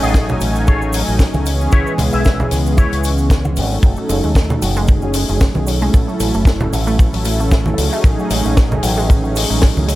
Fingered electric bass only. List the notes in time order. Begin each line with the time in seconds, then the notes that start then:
0.03 A1
0.41 A1
1.08 A1
1.34 C#2
1.73 C#2
1.99 C#2
2.13 B1
2.51 C#2
2.92 C#2
3.57 G#1
3.83 F#1
4.09 F#1
4.24 D#2
4.62 F#1
5.29 F#1
5.55 B1
5.94 A1
6.20 A1
6.34 F#1
6.72 A1
7.14 A1
7.78 C#2
8.04 A1
8.30 A1
8.45 A1
8.83 A1
9.50 A1
9.77 C#2